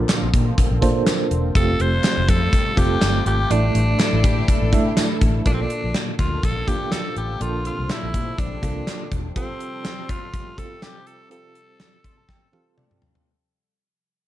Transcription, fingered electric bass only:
0, 0, Header, 1, 2, 480
1, 0, Start_track
1, 0, Tempo, 487805
1, 1529, Time_signature, 4, 2, 24, 8
1, 14049, End_track
2, 0, Start_track
2, 0, Title_t, "Fingered electric bass"
2, 0, Program_c, 0, 33
2, 218, Note_on_c, 0, 34, 100
2, 300, Note_off_c, 0, 34, 0
2, 331, Note_on_c, 0, 46, 99
2, 510, Note_off_c, 0, 46, 0
2, 701, Note_on_c, 0, 34, 94
2, 782, Note_off_c, 0, 34, 0
2, 808, Note_on_c, 0, 46, 102
2, 988, Note_off_c, 0, 46, 0
2, 1288, Note_on_c, 0, 28, 89
2, 1468, Note_off_c, 0, 28, 0
2, 1527, Note_on_c, 0, 29, 108
2, 1708, Note_off_c, 0, 29, 0
2, 1767, Note_on_c, 0, 29, 93
2, 1948, Note_off_c, 0, 29, 0
2, 2139, Note_on_c, 0, 29, 108
2, 2221, Note_off_c, 0, 29, 0
2, 2248, Note_on_c, 0, 41, 109
2, 2428, Note_off_c, 0, 41, 0
2, 2728, Note_on_c, 0, 29, 94
2, 2908, Note_off_c, 0, 29, 0
2, 2968, Note_on_c, 0, 31, 94
2, 3149, Note_off_c, 0, 31, 0
2, 3205, Note_on_c, 0, 32, 96
2, 3387, Note_off_c, 0, 32, 0
2, 3447, Note_on_c, 0, 33, 115
2, 3628, Note_off_c, 0, 33, 0
2, 3688, Note_on_c, 0, 33, 108
2, 3869, Note_off_c, 0, 33, 0
2, 4062, Note_on_c, 0, 33, 97
2, 4143, Note_off_c, 0, 33, 0
2, 4171, Note_on_c, 0, 45, 96
2, 4351, Note_off_c, 0, 45, 0
2, 4542, Note_on_c, 0, 33, 98
2, 4651, Note_on_c, 0, 45, 95
2, 4665, Note_off_c, 0, 33, 0
2, 4830, Note_off_c, 0, 45, 0
2, 5132, Note_on_c, 0, 33, 88
2, 5311, Note_off_c, 0, 33, 0
2, 5370, Note_on_c, 0, 34, 97
2, 5550, Note_off_c, 0, 34, 0
2, 5745, Note_on_c, 0, 34, 82
2, 5824, Note_off_c, 0, 34, 0
2, 6091, Note_on_c, 0, 38, 84
2, 6270, Note_off_c, 0, 38, 0
2, 6330, Note_on_c, 0, 34, 81
2, 6510, Note_off_c, 0, 34, 0
2, 7049, Note_on_c, 0, 33, 75
2, 7229, Note_off_c, 0, 33, 0
2, 7288, Note_on_c, 0, 34, 92
2, 7567, Note_off_c, 0, 34, 0
2, 7661, Note_on_c, 0, 36, 82
2, 7742, Note_off_c, 0, 36, 0
2, 7903, Note_on_c, 0, 34, 84
2, 7983, Note_off_c, 0, 34, 0
2, 8012, Note_on_c, 0, 46, 85
2, 8191, Note_off_c, 0, 46, 0
2, 8249, Note_on_c, 0, 34, 85
2, 8429, Note_off_c, 0, 34, 0
2, 8489, Note_on_c, 0, 36, 77
2, 8669, Note_off_c, 0, 36, 0
2, 8969, Note_on_c, 0, 28, 76
2, 9149, Note_off_c, 0, 28, 0
2, 14049, End_track
0, 0, End_of_file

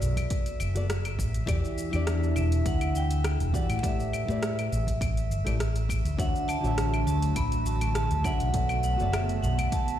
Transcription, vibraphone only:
0, 0, Header, 1, 2, 480
1, 0, Start_track
1, 0, Key_signature, 2, "major"
1, 0, Tempo, 588235
1, 1211, Time_signature, 4, 2, 24, 8
1, 8155, End_track
2, 0, Start_track
2, 0, Title_t, "Vibraphone"
2, 0, Program_c, 0, 11
2, 0, Note_on_c, 0, 74, 89
2, 458, Note_off_c, 0, 74, 0
2, 1932, Note_on_c, 0, 76, 105
2, 2155, Note_off_c, 0, 76, 0
2, 2172, Note_on_c, 0, 78, 109
2, 2419, Note_off_c, 0, 78, 0
2, 2420, Note_on_c, 0, 79, 121
2, 2897, Note_on_c, 0, 78, 96
2, 2910, Note_off_c, 0, 79, 0
2, 3141, Note_off_c, 0, 78, 0
2, 3144, Note_on_c, 0, 76, 99
2, 4065, Note_off_c, 0, 76, 0
2, 5052, Note_on_c, 0, 78, 114
2, 5288, Note_on_c, 0, 81, 114
2, 5299, Note_off_c, 0, 78, 0
2, 5736, Note_off_c, 0, 81, 0
2, 5768, Note_on_c, 0, 81, 107
2, 5877, Note_off_c, 0, 81, 0
2, 6010, Note_on_c, 0, 83, 115
2, 6234, Note_off_c, 0, 83, 0
2, 6251, Note_on_c, 0, 81, 102
2, 6474, Note_off_c, 0, 81, 0
2, 6491, Note_on_c, 0, 81, 110
2, 6736, Note_on_c, 0, 78, 107
2, 6738, Note_off_c, 0, 81, 0
2, 7204, Note_off_c, 0, 78, 0
2, 7214, Note_on_c, 0, 78, 99
2, 7435, Note_off_c, 0, 78, 0
2, 7450, Note_on_c, 0, 76, 100
2, 7558, Note_off_c, 0, 76, 0
2, 7691, Note_on_c, 0, 78, 107
2, 7933, Note_on_c, 0, 81, 112
2, 7938, Note_off_c, 0, 78, 0
2, 8155, Note_off_c, 0, 81, 0
2, 8155, End_track
0, 0, End_of_file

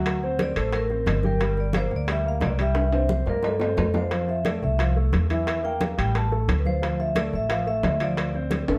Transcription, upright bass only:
0, 0, Header, 1, 2, 480
1, 0, Start_track
1, 0, Key_signature, -1, "minor"
1, 0, Tempo, 338409
1, 78, Time_signature, 4, 2, 24, 8
1, 12461, End_track
2, 0, Start_track
2, 0, Title_t, "Upright bass"
2, 0, Program_c, 0, 32
2, 0, Note_on_c, 0, 38, 78
2, 718, Note_off_c, 0, 38, 0
2, 794, Note_on_c, 0, 33, 84
2, 1464, Note_off_c, 0, 33, 0
2, 1511, Note_on_c, 0, 31, 85
2, 2631, Note_off_c, 0, 31, 0
2, 2711, Note_on_c, 0, 38, 76
2, 3381, Note_off_c, 0, 38, 0
2, 3432, Note_on_c, 0, 36, 81
2, 4552, Note_off_c, 0, 36, 0
2, 4629, Note_on_c, 0, 43, 81
2, 5300, Note_off_c, 0, 43, 0
2, 5353, Note_on_c, 0, 41, 75
2, 6472, Note_off_c, 0, 41, 0
2, 6559, Note_on_c, 0, 36, 82
2, 7226, Note_off_c, 0, 36, 0
2, 7285, Note_on_c, 0, 40, 80
2, 8399, Note_off_c, 0, 40, 0
2, 8482, Note_on_c, 0, 33, 85
2, 9148, Note_off_c, 0, 33, 0
2, 9193, Note_on_c, 0, 38, 86
2, 10314, Note_off_c, 0, 38, 0
2, 10394, Note_on_c, 0, 33, 83
2, 11065, Note_off_c, 0, 33, 0
2, 11107, Note_on_c, 0, 38, 75
2, 12231, Note_off_c, 0, 38, 0
2, 12315, Note_on_c, 0, 33, 80
2, 12461, Note_off_c, 0, 33, 0
2, 12461, End_track
0, 0, End_of_file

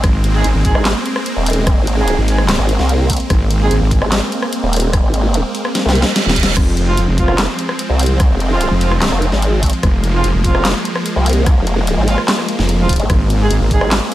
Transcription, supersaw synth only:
0, 0, Header, 1, 2, 480
1, 0, Start_track
1, 0, Key_signature, -4, "minor"
1, 0, Tempo, 408163
1, 42, Time_signature, 4, 2, 24, 8
1, 16632, End_track
2, 0, Start_track
2, 0, Title_t, "Supersaw synth"
2, 0, Program_c, 0, 81
2, 0, Note_on_c, 0, 56, 72
2, 0, Note_on_c, 0, 60, 91
2, 42, Note_on_c, 0, 58, 75
2, 7676, Note_off_c, 0, 56, 0
2, 7676, Note_off_c, 0, 58, 0
2, 7676, Note_off_c, 0, 60, 0
2, 7723, Note_on_c, 0, 53, 82
2, 7723, Note_on_c, 0, 56, 78
2, 7723, Note_on_c, 0, 60, 88
2, 11524, Note_off_c, 0, 60, 0
2, 11562, Note_on_c, 0, 58, 91
2, 15356, Note_off_c, 0, 53, 0
2, 15403, Note_on_c, 0, 60, 89
2, 16632, Note_off_c, 0, 56, 0
2, 16632, Note_off_c, 0, 58, 0
2, 16632, Note_off_c, 0, 60, 0
2, 16632, End_track
0, 0, End_of_file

